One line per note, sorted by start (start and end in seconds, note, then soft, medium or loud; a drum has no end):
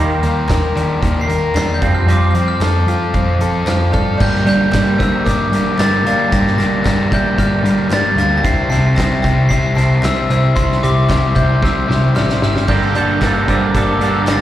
0.00 0.20 D#2 loud
0.00 0.22 D#3 loud
0.00 1.29 D#3 medium
0.00 0.22 G3 medium
0.00 0.22 A#3 loud
0.00 0.23 G5 loud
0.23 0.46 D#3 medium
0.23 0.47 D#3 medium
0.23 0.47 G3 medium
0.23 1.00 A#3 medium
0.23 closed hi-hat medium
0.48 0.73 D#2 medium
0.48 0.73 D#3 medium
0.48 0.74 G3 medium
0.48 1.27 A#4 medium
0.48 kick medium
0.48 snare loud
0.48 clap loud
0.48 closed hi-hat medium
0.48 tambourine loud
0.75 0.99 D#3 medium
0.75 1.00 D#3 medium
0.75 1.00 G3 medium
0.75 1.54 D4 medium
0.75 clap medium
0.75 closed hi-hat medium
1.01 1.26 D#2 loud
1.01 1.27 D#3 medium
1.01 1.27 G3 medium
1.01 1.81 A#3 medium
1.01 kick medium
1.01 closed hi-hat medium
1.21 1.38 C7 medium
1.28 1.52 D#3 medium
1.28 1.53 D#3 medium
1.28 1.53 G3 medium
1.28 1.81 A#4 medium
1.28 closed hi-hat medium
1.38 1.55 A#6 medium
1.54 1.78 E2 medium
1.54 1.79 D#3 medium
1.54 1.80 G3 medium
1.54 1.82 D4 medium
1.54 1.73 C7 loud
1.54 snare loud
1.54 clap loud
1.54 closed hi-hat medium
1.54 tambourine loud
1.74 1.91 G6 medium
1.81 2.05 F2 medium
1.81 2.06 F3 medium
1.81 2.07 F3 medium
1.81 2.07 G3 loud
1.81 2.07 C4 medium
1.81 kick loud
1.81 closed hi-hat medium
1.94 2.10 F6 medium
2.07 2.31 F2 loud
2.07 2.33 F3 medium
2.07 3.41 F3 medium
2.07 2.33 G3 medium
2.07 2.34 C4 medium
2.07 2.27 D6 medium
2.07 closed hi-hat medium
2.30 2.58 F3 medium
2.30 2.46 F6 medium
2.35 2.59 F3 medium
2.35 2.59 G3 medium
2.35 3.13 C4 medium
2.35 closed hi-hat medium
2.48 2.97 F6 loud
2.60 2.84 F2 medium
2.60 2.85 F3 medium
2.60 2.86 G3 medium
2.60 3.40 A4 medium
2.60 snare loud
2.60 clap medium
2.60 closed hi-hat medium
2.60 tambourine medium
2.86 3.10 F3 medium
2.86 3.12 F3 medium
2.86 3.12 G3 medium
2.86 3.66 F4 medium
2.86 closed hi-hat medium
3.14 3.37 F2 loud
3.14 3.38 F3 medium
3.14 3.39 G3 medium
3.14 4.20 C4 medium
3.14 kick medium
3.14 closed hi-hat medium
3.38 3.63 F3 medium
3.38 3.65 F3 medium
3.38 3.66 G3 medium
3.38 3.92 A4 medium
3.38 closed hi-hat medium
3.65 3.90 F2 medium
3.65 3.91 F3 medium
3.65 3.92 G3 medium
3.65 4.20 F4 medium
3.65 3.92 C5 medium
3.65 snare loud
3.65 clap loud
3.65 closed hi-hat loud
3.65 tambourine loud
3.69 3.93 F6 loud
3.92 4.18 G2 medium
3.92 4.18 F3 medium
3.92 4.18 G3 medium
3.92 4.20 A4 medium
3.92 4.16 D5 medium
3.92 4.21 F6 medium
3.92 kick medium
3.92 closed hi-hat medium
4.18 4.47 G2 loud
4.18 4.44 G2 loud
4.18 4.46 D3 loud
4.18 4.47 G3 loud
4.18 4.48 A#3 loud
4.18 4.48 D4 medium
4.18 4.44 D5 medium
4.18 4.47 G6 loud
4.18 kick loud
4.18 crash loud
4.34 snare soft
4.46 4.73 G2 medium
4.46 4.73 D3 loud
4.46 4.70 G3 medium
4.46 4.74 G3 medium
4.46 4.74 A#3 medium
4.46 4.75 D4 loud
4.46 4.96 D5 medium
4.46 5.02 G6 loud
4.46 snare soft
4.46 closed hi-hat medium
4.72 4.97 G2 loud
4.72 5.00 G2 medium
4.72 5.00 D3 medium
4.72 5.01 G3 medium
4.72 5.02 A#3 medium
4.72 5.02 D4 medium
4.72 kick medium
4.72 snare loud
4.72 clap loud
4.72 closed hi-hat loud
4.72 tambourine loud
4.98 5.26 G2 medium
4.98 5.26 D3 medium
4.98 5.23 G3 medium
4.98 5.27 G3 medium
4.98 5.27 A#3 loud
4.98 5.24 C5 medium
4.98 5.27 E6 medium
4.98 kick medium
4.98 closed hi-hat medium
5.03 5.29 D4 medium
5.24 5.50 G2 medium
5.24 5.52 G2 loud
5.24 5.53 D3 loud
5.24 5.54 G3 loud
5.24 5.75 A#4 medium
5.24 5.75 D6 loud
5.24 kick medium
5.24 closed hi-hat loud
5.28 5.54 A#3 loud
5.28 5.54 D4 loud
5.52 5.78 G2 medium
5.52 5.79 D3 medium
5.52 5.76 G3 medium
5.52 5.80 G3 loud
5.52 5.80 A#3 loud
5.52 5.81 D4 loud
5.52 closed hi-hat medium
5.78 6.02 G2 medium
5.78 6.05 G2 medium
5.78 6.05 D3 medium
5.78 6.07 G3 loud
5.78 6.06 A#3 medium
5.78 6.07 D4 medium
5.78 6.04 D5 medium
5.78 6.05 A6 loud
5.78 snare loud
5.78 clap medium
5.78 closed hi-hat loud
5.78 tambourine loud
6.05 6.31 G2 medium
6.05 6.31 D3 medium
6.05 6.28 G3 medium
6.05 6.33 G3 medium
6.05 6.32 A#3 loud
6.05 6.33 D4 loud
6.05 6.31 F5 loud
6.05 6.34 A6 loud
6.05 closed hi-hat medium
6.32 6.56 G2 medium
6.32 6.56 G2 loud
6.32 6.57 D3 loud
6.32 6.58 G3 medium
6.32 6.58 A#3 loud
6.32 6.59 D4 loud
6.32 6.57 G5 loud
6.32 6.57 A#6 loud
6.32 kick loud
6.32 closed hi-hat loud
6.47 snare soft
6.57 6.83 G2 medium
6.57 6.84 D3 loud
6.57 6.85 G3 medium
6.57 6.82 G3 medium
6.57 6.85 A#3 loud
6.57 6.86 D4 medium
6.57 7.08 G5 medium
6.57 7.08 A#6 loud
6.57 snare soft
6.57 closed hi-hat medium
6.85 7.11 G2 medium
6.85 7.09 G2 loud
6.85 7.11 D3 medium
6.85 7.12 G3 medium
6.85 7.12 A#3 medium
6.85 7.13 D4 medium
6.85 kick medium
6.85 snare loud
6.85 clap medium
6.85 closed hi-hat loud
6.85 tambourine loud
7.12 7.37 G2 medium
7.12 7.37 D3 medium
7.12 7.35 G3 medium
7.12 7.38 G3 medium
7.12 7.38 A#3 medium
7.12 7.39 D4 loud
7.12 7.37 E5 medium
7.12 7.40 G6 loud
7.12 kick medium
7.12 closed hi-hat medium
7.38 7.62 G2 loud
7.38 7.62 G2 medium
7.38 7.63 D3 loud
7.38 7.65 G3 loud
7.38 7.63 A#3 loud
7.38 7.65 D4 loud
7.38 7.87 D5 medium
7.38 7.94 F6 loud
7.38 kick medium
7.38 closed hi-hat medium
7.64 7.90 G2 loud
7.64 7.91 D3 medium
7.64 7.88 G3 loud
7.64 7.92 G3 loud
7.64 7.91 A#3 medium
7.64 7.92 D4 medium
7.64 closed hi-hat medium
7.90 8.14 G2 medium
7.90 8.17 G2 medium
7.90 8.17 D3 medium
7.90 8.18 G3 loud
7.90 8.18 A#3 medium
7.90 8.19 D4 loud
7.90 8.17 D5 medium
7.90 8.18 A6 loud
7.90 snare loud
7.90 clap loud
7.90 closed hi-hat loud
7.90 tambourine loud
8.16 8.40 D2 medium
8.16 8.43 G2 medium
8.16 8.43 D3 medium
8.16 8.45 G3 loud
8.16 8.45 D4 medium
8.16 8.36 F5 loud
8.16 8.39 A6 loud
8.16 closed hi-hat medium
8.20 8.44 A#3 medium
8.37 8.42 G5 medium
8.37 8.44 A#6 medium
8.43 8.68 C2 loud
8.43 8.70 C3 loud
8.43 8.71 G3 loud
8.43 8.71 C4 loud
8.43 8.71 E4 loud
8.43 8.68 G5 medium
8.43 8.69 C7 loud
8.43 kick loud
8.43 closed hi-hat loud
8.70 8.93 C3 medium
8.70 8.97 C3 loud
8.70 8.97 G3 medium
8.70 8.98 C4 loud
8.70 8.98 E4 medium
8.70 8.95 A5 medium
8.70 8.95 C7 loud
8.70 snare soft
8.70 closed hi-hat medium
8.95 9.21 C2 loud
8.95 9.23 C3 medium
8.95 9.24 G3 medium
8.95 9.25 C4 loud
8.95 9.25 E4 medium
8.95 9.21 G5 loud
8.95 9.22 A#6 loud
8.95 kick medium
8.95 clap loud
8.95 closed hi-hat loud
8.95 tambourine loud
9.00 snare loud
9.22 9.50 C3 medium
9.22 9.47 C3 medium
9.22 9.50 G3 loud
9.22 9.50 C4 loud
9.22 9.51 E4 loud
9.22 9.48 G5 loud
9.22 9.51 A#6 loud
9.22 kick medium
9.22 closed hi-hat medium
9.49 9.74 C2 medium
9.49 9.76 C3 loud
9.49 9.76 G3 loud
9.49 9.77 C4 loud
9.49 9.77 E4 loud
9.49 9.75 G5 loud
9.49 9.74 C7 loud
9.49 kick medium
9.49 closed hi-hat loud
9.75 10.00 C3 medium
9.75 10.02 C3 loud
9.75 10.03 G3 medium
9.75 10.02 C4 loud
9.75 10.03 E4 medium
9.75 10.01 A5 medium
9.75 10.01 C7 loud
9.75 closed hi-hat medium
10.03 10.26 C2 medium
10.03 10.29 C3 medium
10.03 10.30 G3 loud
10.03 10.30 C4 medium
10.03 10.30 E4 loud
10.03 10.28 C5 medium
10.03 10.29 E6 loud
10.03 snare loud
10.03 clap loud
10.03 closed hi-hat loud
10.03 tambourine loud
10.29 10.53 C3 medium
10.29 10.54 C3 medium
10.29 10.56 G3 loud
10.29 10.55 C4 medium
10.29 10.55 E4 loud
10.29 10.55 C5 medium
10.29 10.57 E6 medium
10.29 closed hi-hat medium
10.55 10.79 C2 loud
10.55 10.82 C3 medium
10.55 10.83 G3 loud
10.55 10.82 C4 loud
10.55 10.83 E4 loud
10.55 10.81 G4 medium
10.55 10.83 C6 loud
10.55 kick loud
10.55 closed hi-hat medium
10.72 snare soft
10.83 11.08 C3 medium
10.83 11.06 C3 medium
10.83 11.09 G3 medium
10.83 11.09 C4 medium
10.83 11.09 E4 medium
10.83 11.32 G4 medium
10.83 11.37 D6 medium
10.83 closed hi-hat medium
11.09 11.33 C2 loud
11.09 11.34 C3 medium
11.09 11.35 G3 medium
11.09 11.35 C4 medium
11.09 11.36 E4 medium
11.09 kick medium
11.09 snare loud
11.09 clap medium
11.09 closed hi-hat loud
11.09 tambourine medium
11.35 11.60 C3 medium
11.35 11.59 C3 medium
11.35 11.62 G3 medium
11.35 11.61 C4 medium
11.35 11.61 E4 medium
11.35 11.60 E5 medium
11.35 11.63 G6 medium
11.35 kick medium
11.35 closed hi-hat medium
11.62 11.85 C2 loud
11.62 11.86 C3 loud
11.62 11.88 G3 loud
11.62 11.87 C4 loud
11.62 11.88 E4 loud
11.62 12.12 C5 medium
11.62 12.18 E6 medium
11.62 kick medium
11.62 snare medium
11.87 12.14 C3 medium
11.87 12.13 C3 loud
11.87 12.16 G3 medium
11.87 12.15 C4 medium
11.87 12.15 E4 loud
11.87 snare medium
12.15 12.40 A1 medium
12.15 12.41 C3 medium
12.15 12.42 G3 medium
12.15 12.42 C4 medium
12.15 12.42 E4 loud
12.15 12.40 D5 medium
12.15 12.43 F6 loud
12.15 snare loud
12.15 clap medium
12.29 snare medium
12.42 12.66 G1 medium
12.42 12.67 C3 medium
12.42 12.68 G3 medium
12.42 12.67 C4 medium
12.42 12.67 E4 loud
12.42 12.67 D5 medium
12.42 12.70 F6 loud
12.42 snare loud
12.56 snare loud
12.68 12.92 G1 loud
12.68 12.94 G2 loud
12.68 12.95 G2 medium
12.68 12.94 D3 loud
12.68 12.95 G3 medium
12.68 12.95 G3 loud
12.68 12.95 A#3 medium
12.68 12.96 A#3 loud
12.68 12.96 D4 loud
12.68 12.97 A4 loud
12.68 12.94 D5 medium
12.68 12.95 G6 loud
12.68 kick loud
12.68 splash medium
12.68 crash loud
12.95 13.21 G2 medium
12.95 13.20 G2 medium
12.95 13.19 G2 medium
12.95 13.21 D3 medium
12.95 13.20 D3 medium
12.95 13.21 G3 medium
12.95 13.22 G3 medium
12.95 13.22 A#3 medium
12.95 13.22 A#3 loud
12.95 13.22 D4 medium
12.95 13.23 A4 loud
12.95 13.45 D5 medium
12.95 13.50 G6 loud
12.95 closed hi-hat medium
13.21 13.45 G1 loud
13.21 13.48 G2 medium
13.21 13.47 G2 medium
13.21 13.47 D3 medium
13.21 13.48 G3 medium
13.21 13.48 G3 loud
13.21 13.49 A#3 medium
13.21 13.48 A#3 medium
13.21 13.49 D4 medium
13.21 13.49 A4 loud
13.21 kick medium
13.21 snare loud
13.21 clap medium
13.21 closed hi-hat loud
13.21 tambourine loud
13.47 13.73 G2 medium
13.47 13.71 G2 medium
13.47 13.73 D3 medium
13.47 13.74 D3 loud
13.47 13.75 G3 loud
13.47 13.74 G3 medium
13.47 13.74 A#3 loud
13.47 13.74 A#3 medium
13.47 13.75 D4 loud
13.47 13.75 A4 loud
13.47 13.73 C5 medium
13.47 13.76 E6 medium
13.47 kick medium
13.47 closed hi-hat medium
13.74 13.98 G1 loud
13.74 14.00 G2 medium
13.74 14.00 G2 loud
13.74 14.00 D3 medium
13.74 14.00 D3 loud
13.74 14.01 G3 loud
13.74 14.02 G3 loud
13.74 14.01 A#3 loud
13.74 14.02 D4 loud
13.74 14.02 A4 loud
13.74 14.25 A#4 medium
13.74 14.30 D6 loud
13.74 kick medium
13.74 closed hi-hat loud
14.01 14.24 G2 medium
14.01 14.25 G2 medium
14.01 14.27 G2 medium
14.01 14.26 D3 loud
14.01 14.27 D3 medium
14.01 14.27 G3 loud
14.01 14.28 G3 loud
14.01 14.27 A#3 loud
14.01 14.28 A#3 medium
14.01 14.29 D4 loud
14.01 14.28 D4 loud
14.01 14.29 A4 loud
14.01 closed hi-hat medium
14.27 14.41 G1 medium
14.27 14.41 G2 medium
14.27 14.41 D3 medium
14.27 14.41 G3 medium
14.27 14.41 A#3 medium
14.27 14.41 D4 loud
14.27 14.41 D4 medium
14.27 14.41 A4 loud
14.27 14.41 D5 medium
14.27 14.41 A6 loud
14.27 snare loud
14.27 clap loud
14.27 closed hi-hat loud
14.27 tambourine loud